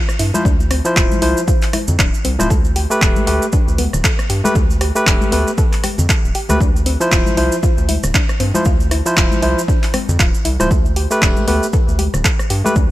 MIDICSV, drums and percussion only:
0, 0, Header, 1, 2, 480
1, 0, Start_track
1, 0, Tempo, 512821
1, 422, Time_signature, 4, 2, 24, 8
1, 12084, End_track
2, 0, Start_track
2, 0, Title_t, "Drums"
2, 81, Note_on_c, 9, 37, 83
2, 85, Note_on_c, 9, 70, 39
2, 175, Note_off_c, 9, 37, 0
2, 178, Note_off_c, 9, 70, 0
2, 181, Note_on_c, 9, 46, 109
2, 275, Note_off_c, 9, 46, 0
2, 323, Note_on_c, 9, 70, 87
2, 325, Note_on_c, 9, 63, 95
2, 416, Note_off_c, 9, 70, 0
2, 419, Note_off_c, 9, 63, 0
2, 422, Note_on_c, 9, 36, 124
2, 428, Note_on_c, 9, 70, 69
2, 515, Note_off_c, 9, 36, 0
2, 522, Note_off_c, 9, 70, 0
2, 563, Note_on_c, 9, 70, 40
2, 656, Note_off_c, 9, 70, 0
2, 662, Note_on_c, 9, 37, 82
2, 662, Note_on_c, 9, 46, 115
2, 756, Note_off_c, 9, 37, 0
2, 756, Note_off_c, 9, 46, 0
2, 796, Note_on_c, 9, 70, 80
2, 890, Note_off_c, 9, 70, 0
2, 902, Note_on_c, 9, 36, 126
2, 905, Note_on_c, 9, 39, 127
2, 905, Note_on_c, 9, 70, 75
2, 996, Note_off_c, 9, 36, 0
2, 999, Note_off_c, 9, 39, 0
2, 999, Note_off_c, 9, 70, 0
2, 1043, Note_on_c, 9, 70, 41
2, 1050, Note_on_c, 9, 63, 98
2, 1137, Note_off_c, 9, 70, 0
2, 1142, Note_on_c, 9, 46, 108
2, 1143, Note_off_c, 9, 63, 0
2, 1236, Note_off_c, 9, 46, 0
2, 1284, Note_on_c, 9, 70, 76
2, 1377, Note_off_c, 9, 70, 0
2, 1383, Note_on_c, 9, 36, 124
2, 1383, Note_on_c, 9, 70, 71
2, 1476, Note_off_c, 9, 36, 0
2, 1477, Note_off_c, 9, 70, 0
2, 1512, Note_on_c, 9, 70, 37
2, 1522, Note_on_c, 9, 46, 63
2, 1525, Note_on_c, 9, 39, 39
2, 1606, Note_off_c, 9, 70, 0
2, 1616, Note_off_c, 9, 46, 0
2, 1619, Note_off_c, 9, 39, 0
2, 1622, Note_on_c, 9, 37, 81
2, 1622, Note_on_c, 9, 46, 113
2, 1625, Note_on_c, 9, 63, 70
2, 1716, Note_off_c, 9, 37, 0
2, 1716, Note_off_c, 9, 46, 0
2, 1718, Note_off_c, 9, 63, 0
2, 1756, Note_on_c, 9, 70, 80
2, 1760, Note_on_c, 9, 64, 80
2, 1850, Note_off_c, 9, 70, 0
2, 1854, Note_off_c, 9, 64, 0
2, 1863, Note_on_c, 9, 36, 125
2, 1864, Note_on_c, 9, 70, 66
2, 1866, Note_on_c, 9, 39, 127
2, 1957, Note_off_c, 9, 36, 0
2, 1958, Note_off_c, 9, 70, 0
2, 1960, Note_off_c, 9, 39, 0
2, 2004, Note_on_c, 9, 70, 39
2, 2097, Note_off_c, 9, 70, 0
2, 2103, Note_on_c, 9, 46, 112
2, 2197, Note_off_c, 9, 46, 0
2, 2242, Note_on_c, 9, 37, 64
2, 2244, Note_on_c, 9, 63, 101
2, 2247, Note_on_c, 9, 70, 87
2, 2336, Note_off_c, 9, 37, 0
2, 2338, Note_off_c, 9, 63, 0
2, 2341, Note_off_c, 9, 70, 0
2, 2343, Note_on_c, 9, 36, 126
2, 2345, Note_on_c, 9, 70, 75
2, 2437, Note_off_c, 9, 36, 0
2, 2438, Note_off_c, 9, 70, 0
2, 2476, Note_on_c, 9, 70, 44
2, 2570, Note_off_c, 9, 70, 0
2, 2583, Note_on_c, 9, 46, 116
2, 2676, Note_off_c, 9, 46, 0
2, 2724, Note_on_c, 9, 70, 90
2, 2817, Note_off_c, 9, 70, 0
2, 2823, Note_on_c, 9, 36, 126
2, 2826, Note_on_c, 9, 39, 123
2, 2830, Note_on_c, 9, 70, 76
2, 2917, Note_off_c, 9, 36, 0
2, 2920, Note_off_c, 9, 39, 0
2, 2923, Note_off_c, 9, 70, 0
2, 2958, Note_on_c, 9, 70, 47
2, 2962, Note_on_c, 9, 63, 91
2, 3052, Note_off_c, 9, 70, 0
2, 3055, Note_off_c, 9, 63, 0
2, 3063, Note_on_c, 9, 46, 108
2, 3156, Note_off_c, 9, 46, 0
2, 3203, Note_on_c, 9, 70, 87
2, 3297, Note_off_c, 9, 70, 0
2, 3299, Note_on_c, 9, 70, 75
2, 3303, Note_on_c, 9, 36, 124
2, 3392, Note_off_c, 9, 70, 0
2, 3397, Note_off_c, 9, 36, 0
2, 3444, Note_on_c, 9, 70, 39
2, 3538, Note_off_c, 9, 70, 0
2, 3542, Note_on_c, 9, 46, 115
2, 3543, Note_on_c, 9, 63, 72
2, 3636, Note_off_c, 9, 46, 0
2, 3637, Note_off_c, 9, 63, 0
2, 3682, Note_on_c, 9, 37, 66
2, 3685, Note_on_c, 9, 64, 77
2, 3685, Note_on_c, 9, 70, 83
2, 3775, Note_off_c, 9, 37, 0
2, 3779, Note_off_c, 9, 64, 0
2, 3779, Note_off_c, 9, 70, 0
2, 3783, Note_on_c, 9, 36, 122
2, 3784, Note_on_c, 9, 70, 70
2, 3786, Note_on_c, 9, 39, 120
2, 3876, Note_off_c, 9, 36, 0
2, 3877, Note_off_c, 9, 70, 0
2, 3880, Note_off_c, 9, 39, 0
2, 3921, Note_on_c, 9, 70, 44
2, 3922, Note_on_c, 9, 37, 81
2, 4014, Note_off_c, 9, 70, 0
2, 4015, Note_off_c, 9, 37, 0
2, 4023, Note_on_c, 9, 46, 113
2, 4116, Note_off_c, 9, 46, 0
2, 4163, Note_on_c, 9, 63, 104
2, 4167, Note_on_c, 9, 70, 77
2, 4257, Note_off_c, 9, 63, 0
2, 4261, Note_off_c, 9, 70, 0
2, 4262, Note_on_c, 9, 36, 122
2, 4262, Note_on_c, 9, 70, 74
2, 4356, Note_off_c, 9, 36, 0
2, 4356, Note_off_c, 9, 70, 0
2, 4403, Note_on_c, 9, 70, 39
2, 4496, Note_off_c, 9, 70, 0
2, 4502, Note_on_c, 9, 37, 78
2, 4502, Note_on_c, 9, 46, 115
2, 4596, Note_off_c, 9, 37, 0
2, 4596, Note_off_c, 9, 46, 0
2, 4640, Note_on_c, 9, 70, 88
2, 4734, Note_off_c, 9, 70, 0
2, 4742, Note_on_c, 9, 36, 123
2, 4746, Note_on_c, 9, 39, 122
2, 4749, Note_on_c, 9, 70, 72
2, 4836, Note_off_c, 9, 36, 0
2, 4840, Note_off_c, 9, 39, 0
2, 4843, Note_off_c, 9, 70, 0
2, 4880, Note_on_c, 9, 63, 102
2, 4882, Note_on_c, 9, 70, 43
2, 4973, Note_off_c, 9, 63, 0
2, 4976, Note_off_c, 9, 70, 0
2, 4982, Note_on_c, 9, 46, 110
2, 5076, Note_off_c, 9, 46, 0
2, 5124, Note_on_c, 9, 70, 77
2, 5218, Note_off_c, 9, 70, 0
2, 5221, Note_on_c, 9, 70, 64
2, 5222, Note_on_c, 9, 36, 123
2, 5315, Note_off_c, 9, 70, 0
2, 5316, Note_off_c, 9, 36, 0
2, 5362, Note_on_c, 9, 46, 65
2, 5362, Note_on_c, 9, 70, 44
2, 5365, Note_on_c, 9, 39, 37
2, 5455, Note_off_c, 9, 46, 0
2, 5455, Note_off_c, 9, 70, 0
2, 5458, Note_off_c, 9, 39, 0
2, 5463, Note_on_c, 9, 37, 75
2, 5463, Note_on_c, 9, 46, 114
2, 5463, Note_on_c, 9, 63, 64
2, 5556, Note_off_c, 9, 37, 0
2, 5556, Note_off_c, 9, 46, 0
2, 5557, Note_off_c, 9, 63, 0
2, 5599, Note_on_c, 9, 64, 84
2, 5603, Note_on_c, 9, 70, 75
2, 5693, Note_off_c, 9, 64, 0
2, 5697, Note_off_c, 9, 70, 0
2, 5702, Note_on_c, 9, 36, 124
2, 5706, Note_on_c, 9, 39, 117
2, 5706, Note_on_c, 9, 70, 71
2, 5796, Note_off_c, 9, 36, 0
2, 5799, Note_off_c, 9, 39, 0
2, 5800, Note_off_c, 9, 70, 0
2, 5850, Note_on_c, 9, 70, 38
2, 5943, Note_off_c, 9, 70, 0
2, 5943, Note_on_c, 9, 46, 110
2, 6036, Note_off_c, 9, 46, 0
2, 6077, Note_on_c, 9, 63, 97
2, 6079, Note_on_c, 9, 70, 82
2, 6081, Note_on_c, 9, 64, 82
2, 6082, Note_on_c, 9, 37, 61
2, 6171, Note_off_c, 9, 63, 0
2, 6172, Note_off_c, 9, 70, 0
2, 6175, Note_off_c, 9, 37, 0
2, 6175, Note_off_c, 9, 64, 0
2, 6182, Note_on_c, 9, 36, 117
2, 6189, Note_on_c, 9, 70, 67
2, 6276, Note_off_c, 9, 36, 0
2, 6282, Note_off_c, 9, 70, 0
2, 6329, Note_on_c, 9, 70, 42
2, 6422, Note_on_c, 9, 46, 105
2, 6423, Note_off_c, 9, 70, 0
2, 6515, Note_off_c, 9, 46, 0
2, 6560, Note_on_c, 9, 70, 82
2, 6653, Note_off_c, 9, 70, 0
2, 6661, Note_on_c, 9, 70, 69
2, 6662, Note_on_c, 9, 36, 118
2, 6665, Note_on_c, 9, 39, 115
2, 6755, Note_off_c, 9, 70, 0
2, 6756, Note_off_c, 9, 36, 0
2, 6759, Note_off_c, 9, 39, 0
2, 6798, Note_on_c, 9, 63, 91
2, 6802, Note_on_c, 9, 70, 40
2, 6891, Note_off_c, 9, 63, 0
2, 6895, Note_off_c, 9, 70, 0
2, 6902, Note_on_c, 9, 46, 105
2, 6996, Note_off_c, 9, 46, 0
2, 7038, Note_on_c, 9, 70, 75
2, 7132, Note_off_c, 9, 70, 0
2, 7142, Note_on_c, 9, 70, 70
2, 7143, Note_on_c, 9, 36, 120
2, 7235, Note_off_c, 9, 70, 0
2, 7236, Note_off_c, 9, 36, 0
2, 7280, Note_on_c, 9, 70, 42
2, 7374, Note_off_c, 9, 70, 0
2, 7382, Note_on_c, 9, 46, 107
2, 7384, Note_on_c, 9, 63, 66
2, 7476, Note_off_c, 9, 46, 0
2, 7478, Note_off_c, 9, 63, 0
2, 7519, Note_on_c, 9, 64, 81
2, 7519, Note_on_c, 9, 70, 80
2, 7522, Note_on_c, 9, 37, 67
2, 7613, Note_off_c, 9, 64, 0
2, 7613, Note_off_c, 9, 70, 0
2, 7616, Note_off_c, 9, 37, 0
2, 7622, Note_on_c, 9, 70, 64
2, 7623, Note_on_c, 9, 36, 123
2, 7626, Note_on_c, 9, 39, 115
2, 7716, Note_off_c, 9, 36, 0
2, 7716, Note_off_c, 9, 70, 0
2, 7720, Note_off_c, 9, 39, 0
2, 7758, Note_on_c, 9, 70, 36
2, 7763, Note_on_c, 9, 37, 75
2, 7852, Note_off_c, 9, 70, 0
2, 7856, Note_off_c, 9, 37, 0
2, 7863, Note_on_c, 9, 46, 105
2, 7957, Note_off_c, 9, 46, 0
2, 8001, Note_on_c, 9, 70, 76
2, 8002, Note_on_c, 9, 63, 93
2, 8094, Note_off_c, 9, 70, 0
2, 8095, Note_off_c, 9, 63, 0
2, 8096, Note_on_c, 9, 70, 71
2, 8103, Note_on_c, 9, 36, 117
2, 8189, Note_off_c, 9, 70, 0
2, 8196, Note_off_c, 9, 36, 0
2, 8240, Note_on_c, 9, 70, 39
2, 8334, Note_off_c, 9, 70, 0
2, 8343, Note_on_c, 9, 37, 81
2, 8343, Note_on_c, 9, 46, 106
2, 8436, Note_off_c, 9, 37, 0
2, 8436, Note_off_c, 9, 46, 0
2, 8481, Note_on_c, 9, 70, 83
2, 8574, Note_off_c, 9, 70, 0
2, 8583, Note_on_c, 9, 36, 119
2, 8584, Note_on_c, 9, 70, 67
2, 8586, Note_on_c, 9, 39, 116
2, 8676, Note_off_c, 9, 36, 0
2, 8677, Note_off_c, 9, 70, 0
2, 8679, Note_off_c, 9, 39, 0
2, 8720, Note_on_c, 9, 63, 90
2, 8724, Note_on_c, 9, 70, 37
2, 8813, Note_off_c, 9, 63, 0
2, 8817, Note_off_c, 9, 70, 0
2, 8822, Note_on_c, 9, 46, 98
2, 8916, Note_off_c, 9, 46, 0
2, 8972, Note_on_c, 9, 70, 80
2, 9063, Note_on_c, 9, 36, 116
2, 9065, Note_off_c, 9, 70, 0
2, 9070, Note_on_c, 9, 70, 62
2, 9157, Note_off_c, 9, 36, 0
2, 9164, Note_off_c, 9, 70, 0
2, 9201, Note_on_c, 9, 46, 61
2, 9205, Note_on_c, 9, 39, 36
2, 9209, Note_on_c, 9, 70, 41
2, 9295, Note_off_c, 9, 46, 0
2, 9298, Note_off_c, 9, 39, 0
2, 9302, Note_on_c, 9, 37, 78
2, 9302, Note_on_c, 9, 46, 103
2, 9303, Note_off_c, 9, 70, 0
2, 9303, Note_on_c, 9, 63, 65
2, 9395, Note_off_c, 9, 37, 0
2, 9395, Note_off_c, 9, 46, 0
2, 9397, Note_off_c, 9, 63, 0
2, 9443, Note_on_c, 9, 70, 74
2, 9445, Note_on_c, 9, 64, 69
2, 9537, Note_off_c, 9, 70, 0
2, 9538, Note_off_c, 9, 64, 0
2, 9543, Note_on_c, 9, 36, 120
2, 9544, Note_on_c, 9, 70, 64
2, 9545, Note_on_c, 9, 39, 112
2, 9637, Note_off_c, 9, 36, 0
2, 9638, Note_off_c, 9, 70, 0
2, 9639, Note_off_c, 9, 39, 0
2, 9681, Note_on_c, 9, 70, 43
2, 9775, Note_off_c, 9, 70, 0
2, 9782, Note_on_c, 9, 46, 103
2, 9876, Note_off_c, 9, 46, 0
2, 9921, Note_on_c, 9, 37, 63
2, 9924, Note_on_c, 9, 70, 82
2, 9927, Note_on_c, 9, 63, 88
2, 10014, Note_off_c, 9, 37, 0
2, 10017, Note_off_c, 9, 70, 0
2, 10020, Note_off_c, 9, 63, 0
2, 10023, Note_on_c, 9, 36, 111
2, 10024, Note_on_c, 9, 70, 60
2, 10116, Note_off_c, 9, 36, 0
2, 10117, Note_off_c, 9, 70, 0
2, 10161, Note_on_c, 9, 70, 35
2, 10254, Note_off_c, 9, 70, 0
2, 10262, Note_on_c, 9, 46, 105
2, 10355, Note_off_c, 9, 46, 0
2, 10398, Note_on_c, 9, 70, 80
2, 10492, Note_off_c, 9, 70, 0
2, 10503, Note_on_c, 9, 36, 116
2, 10505, Note_on_c, 9, 39, 121
2, 10511, Note_on_c, 9, 70, 61
2, 10596, Note_off_c, 9, 36, 0
2, 10599, Note_off_c, 9, 39, 0
2, 10604, Note_off_c, 9, 70, 0
2, 10639, Note_on_c, 9, 70, 41
2, 10640, Note_on_c, 9, 63, 89
2, 10733, Note_off_c, 9, 70, 0
2, 10734, Note_off_c, 9, 63, 0
2, 10742, Note_on_c, 9, 46, 98
2, 10835, Note_off_c, 9, 46, 0
2, 10884, Note_on_c, 9, 70, 74
2, 10978, Note_off_c, 9, 70, 0
2, 10980, Note_on_c, 9, 70, 67
2, 10983, Note_on_c, 9, 36, 117
2, 11073, Note_off_c, 9, 70, 0
2, 11076, Note_off_c, 9, 36, 0
2, 11123, Note_on_c, 9, 70, 36
2, 11216, Note_off_c, 9, 70, 0
2, 11219, Note_on_c, 9, 63, 61
2, 11222, Note_on_c, 9, 46, 103
2, 11313, Note_off_c, 9, 63, 0
2, 11315, Note_off_c, 9, 46, 0
2, 11361, Note_on_c, 9, 37, 69
2, 11363, Note_on_c, 9, 70, 79
2, 11364, Note_on_c, 9, 64, 75
2, 11455, Note_off_c, 9, 37, 0
2, 11456, Note_off_c, 9, 70, 0
2, 11457, Note_off_c, 9, 64, 0
2, 11462, Note_on_c, 9, 36, 114
2, 11464, Note_on_c, 9, 70, 62
2, 11465, Note_on_c, 9, 39, 115
2, 11556, Note_off_c, 9, 36, 0
2, 11558, Note_off_c, 9, 70, 0
2, 11559, Note_off_c, 9, 39, 0
2, 11601, Note_on_c, 9, 37, 81
2, 11602, Note_on_c, 9, 70, 40
2, 11694, Note_off_c, 9, 37, 0
2, 11695, Note_off_c, 9, 70, 0
2, 11701, Note_on_c, 9, 46, 102
2, 11795, Note_off_c, 9, 46, 0
2, 11846, Note_on_c, 9, 63, 88
2, 11850, Note_on_c, 9, 70, 78
2, 11940, Note_off_c, 9, 63, 0
2, 11940, Note_off_c, 9, 70, 0
2, 11940, Note_on_c, 9, 70, 64
2, 11942, Note_on_c, 9, 36, 116
2, 12034, Note_off_c, 9, 70, 0
2, 12036, Note_off_c, 9, 36, 0
2, 12084, End_track
0, 0, End_of_file